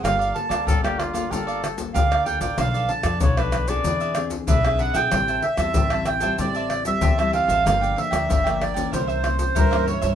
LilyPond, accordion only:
\new Staff \with { instrumentName = "Accordion" } { \time 4/4 \key g \dorian \tempo 4 = 94 f''8 a''8 r2 f''8 g''16 g''16 | f''8 a''8 r2 e''8 ges''16 g''16~ | g''8 e''4 g''8 d''8. e''8. f''8~ | f''8 e''4 d''8 c''4 bes'8 des''16 des''16 | }